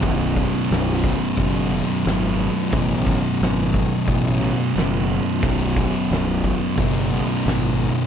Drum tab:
HH |oooooooo|oooooooo|oooooooo|
SD |-oo---o-|-oo---o-|--o---o-|
BD |oo-oo---|oo-oo---|oo-oo---|